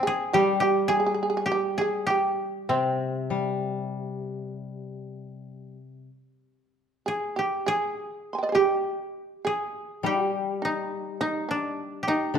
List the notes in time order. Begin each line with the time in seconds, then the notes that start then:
Already playing: C4 D4
0.03 G#4
0.07 G#4
0.33 G3 G4
0.60 G4
0.88 G#4
1.00 G#4
1.06 G#4
1.14 G#4
1.23 G#4
1.30 G#4
1.37 G#4
1.46 G4
1.52 G4
1.78 G#4
2.07 G4
2.69 C3 C4
3.30 G3
7.06 G#4
7.36 G4
7.66 G#4
8.33 G#5 C6
8.38 G5
8.43 D5 D#5
8.49 G#4 C5
8.55 G4
9.45 G#4
10.03 G3 G4
10.62 D#4
11.21 D#4
11.49 D4
12.03 G4
12.08 D#4
12.34 D3 D4